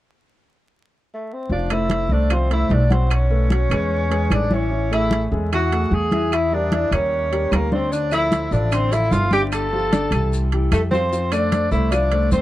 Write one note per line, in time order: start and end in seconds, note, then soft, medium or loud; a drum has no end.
1.14 1.35 A3 medium
1.34 1.54 C4 medium
1.49 2.06 F1 medium
1.49 1.67 F3 medium
1.49 1.73 D4 medium
1.49 1.67 F4 medium
1.49 1.75 D5 medium
1.49 1.68 F5 medium
1.49 high conga soft
1.70 2.04 A3 medium
1.70 2.15 E4 medium
1.70 2.04 A4 medium
1.70 2.04 C5 medium
1.70 2.14 E5 medium
1.70 high conga soft
1.70 high timbale medium
1.70 claves soft
1.90 high conga medium
1.90 high timbale medium
2.09 2.66 C2 medium
2.09 2.27 A3 medium
2.09 2.27 A4 medium
2.09 2.28 C5 medium
2.09 2.35 D5 medium
2.09 high conga soft
2.13 2.35 D4 medium
2.30 2.47 F3 medium
2.30 2.52 C4 medium
2.30 2.48 F4 medium
2.30 2.52 C5 medium
2.30 2.47 F5 medium
2.30 high conga soft
2.30 high timbale medium
2.30 claves medium
2.50 2.84 A3 medium
2.50 2.75 E4 medium
2.50 2.84 A4 medium
2.50 2.84 C5 medium
2.50 2.74 E5 medium
2.50 high conga soft
2.50 high timbale medium
2.69 3.64 B1 medium
2.69 2.94 D5 medium
2.69 high conga medium
2.69 low timbale medium
2.73 2.93 D4 medium
2.90 3.23 F#3 medium
2.90 3.11 C4 medium
2.90 3.23 F#4 medium
2.90 3.12 C5 medium
2.90 3.24 F#5 medium
2.90 high conga medium
2.90 high timbale medium
3.10 4.35 C#4 medium
3.10 4.35 C#5 medium
3.10 high conga soft
3.10 high timbale medium
3.10 claves medium
3.30 3.47 A3 medium
3.30 3.47 A4 medium
3.30 3.47 B4 medium
3.30 high conga soft
3.50 3.67 F#3 medium
3.50 3.67 F#4 medium
3.50 3.68 F#5 medium
3.50 high conga medium
3.50 high timbale medium
3.70 4.27 E2 medium
3.70 4.04 G#3 medium
3.70 4.04 G#4 medium
3.70 4.04 B4 medium
3.70 high conga soft
3.70 high timbale medium
3.70 claves medium
3.90 high conga soft
4.10 4.44 G#3 medium
4.10 4.44 G#4 medium
4.10 4.44 B4 medium
4.10 high conga soft
4.10 high timbale medium
4.30 5.25 A1 medium
4.30 4.55 D4 medium
4.30 4.55 D5 medium
4.30 high conga medium
4.30 high timbale medium
4.30 low timbale medium
4.30 claves medium
4.51 4.68 E3 medium
4.51 4.93 C#4 medium
4.51 4.68 E4 medium
4.51 4.93 C#5 medium
4.51 4.68 E5 medium
4.51 high conga medium
4.71 4.88 E3 medium
4.71 4.88 E4 medium
4.71 4.88 E5 medium
4.71 high conga soft
4.91 5.24 A3 medium
4.91 5.23 E4 medium
4.91 5.24 G#4 medium
4.91 5.25 A4 medium
4.91 5.23 E5 medium
4.91 high conga soft
4.91 high timbale medium
4.91 claves soft
5.11 high conga medium
5.11 high timbale medium
5.31 5.88 E2 medium
5.31 5.48 G#3 medium
5.31 5.48 G#4 medium
5.31 5.48 A4 medium
5.31 high conga soft
5.52 5.68 E3 medium
5.52 5.69 E4 medium
5.52 5.95 F#4 loud
5.52 5.69 E5 medium
5.52 5.95 F#5 medium
5.52 high conga soft
5.52 high timbale medium
5.52 claves medium
5.71 6.05 A3 medium
5.71 6.05 G#4 medium
5.71 6.05 A4 medium
5.71 high conga soft
5.71 high timbale medium
5.91 6.85 E2 medium
5.91 6.36 G#4 medium
5.91 6.35 G#5 medium
5.91 high conga medium
6.12 6.45 E3 medium
6.12 6.45 E4 medium
6.12 6.45 E5 medium
6.12 high conga medium
6.12 high timbale medium
6.31 6.55 E4 medium
6.31 6.55 E5 medium
6.31 high conga soft
6.31 high timbale medium
6.31 claves medium
6.52 6.69 G3 medium
6.52 6.97 D4 medium
6.52 6.69 G4 medium
6.52 6.69 A#4 medium
6.52 6.93 D5 medium
6.52 high conga soft
6.72 6.89 E3 medium
6.72 6.89 E4 medium
6.72 6.89 E5 medium
6.72 high conga medium
6.72 high timbale medium
6.91 7.48 D#2 medium
6.91 7.25 G3 medium
6.91 7.25 G4 medium
6.91 7.26 A#4 medium
6.91 7.53 C#5 medium
6.91 high conga soft
6.91 high timbale medium
6.91 claves medium
6.95 7.57 C#4 medium
7.11 high conga soft
7.32 7.65 G3 medium
7.32 7.65 G4 medium
7.32 7.65 A#4 medium
7.32 high conga soft
7.32 high timbale medium
7.51 8.46 D2 medium
7.51 7.71 A#4 medium
7.51 high conga medium
7.51 high timbale medium
7.51 low timbale medium
7.51 claves medium
7.56 7.74 A#3 medium
7.72 7.88 D3 medium
7.72 7.94 C4 medium
7.72 7.88 D4 medium
7.72 7.93 C5 medium
7.72 7.89 D5 medium
7.72 high conga medium
7.92 8.08 D3 medium
7.92 8.12 D4 medium
7.92 8.08 D4 medium
7.92 8.11 D5 medium
7.92 8.09 D5 medium
7.92 high conga soft
7.92 maracas medium
8.12 8.45 F3 medium
8.12 8.45 E4 medium
8.12 8.55 E4 loud
8.12 8.45 A4 medium
8.12 8.54 E5 medium
8.12 high conga soft
8.12 high timbale medium
8.12 claves medium
8.12 maracas medium
8.32 high conga medium
8.32 high timbale medium
8.32 maracas medium
8.51 9.08 A1 medium
8.51 8.68 F3 medium
8.51 8.75 D4 medium
8.51 8.69 F4 medium
8.51 8.69 A4 medium
8.51 8.74 D5 medium
8.51 high conga soft
8.51 maracas soft
8.71 8.88 D3 medium
8.71 8.95 C4 medium
8.71 8.89 D4 medium
8.71 8.93 C5 medium
8.71 8.89 D5 medium
8.71 high conga soft
8.71 high timbale medium
8.71 claves medium
8.71 maracas medium
8.91 9.24 F3 medium
8.91 9.14 E4 medium
8.91 9.25 F4 medium
8.91 9.25 A4 medium
8.91 9.13 E5 medium
8.91 high conga soft
8.91 high timbale medium
8.91 maracas medium
9.11 10.06 G1 medium
9.11 9.32 F4 medium
9.11 9.32 F5 medium
9.11 high conga medium
9.11 low timbale medium
9.11 maracas medium
9.31 9.65 D3 medium
9.31 9.65 D4 medium
9.31 9.42 G4 loud
9.31 9.65 D5 medium
9.31 9.41 G5 medium
9.31 high conga medium
9.31 high timbale medium
9.31 maracas soft
9.52 10.42 A4 loud
9.52 10.41 A5 medium
9.52 high conga soft
9.52 high timbale medium
9.52 claves medium
9.52 maracas medium
9.72 9.89 F3 medium
9.72 9.89 F4 medium
9.72 9.89 G4 medium
9.72 high conga soft
9.92 10.09 D3 medium
9.92 10.09 D4 medium
9.92 10.09 D5 medium
9.92 high conga medium
9.92 high timbale medium
9.92 maracas medium
10.11 10.67 C2 medium
10.11 10.45 E3 medium
10.11 10.46 E4 medium
10.11 10.46 G4 medium
10.11 high conga soft
10.11 high timbale medium
10.11 claves medium
10.11 maracas soft
10.33 high conga soft
10.33 maracas medium
10.52 10.85 E3 medium
10.52 10.85 E4 medium
10.52 10.86 G4 medium
10.52 high conga soft
10.52 high timbale medium
10.71 11.66 F2 medium
10.71 10.82 A3 medium
10.71 10.81 A4 medium
10.71 high conga medium
10.71 high timbale medium
10.71 claves medium
10.71 maracas medium
10.91 11.09 F3 medium
10.91 11.34 C4 medium
10.91 11.09 F4 medium
10.91 11.34 C5 medium
10.91 11.09 F5 medium
10.91 high conga medium
10.91 maracas soft
11.12 11.29 F3 medium
11.12 11.29 F4 medium
11.12 11.29 F5 medium
11.12 high conga soft
11.12 maracas medium
11.32 11.65 A3 medium
11.32 11.71 D4 loud
11.32 11.65 A4 medium
11.32 11.65 C5 medium
11.32 11.72 D5 medium
11.32 high conga soft
11.32 high timbale medium
11.32 claves medium
11.32 maracas soft
11.52 high conga medium
11.52 high timbale medium
11.52 maracas medium
11.71 12.28 C2 medium
11.71 11.88 A3 medium
11.71 11.92 E4 medium
11.71 11.88 A4 medium
11.71 11.89 C5 medium
11.71 11.94 E5 medium
11.71 high conga soft
11.71 maracas soft
11.91 12.08 F3 medium
11.91 12.31 D4 medium
11.91 12.08 F4 medium
11.91 12.32 D5 medium
11.91 12.09 F5 medium
11.91 high conga soft
11.91 high timbale medium
11.91 claves medium
11.91 maracas medium
12.12 12.42 A3 medium
12.12 12.42 A4 medium
12.12 12.42 C5 medium
12.12 high conga soft
12.12 high timbale medium
12.31 12.42 E2 medium
12.31 12.42 C4 medium
12.31 12.42 C5 medium
12.31 high conga medium
12.31 maracas medium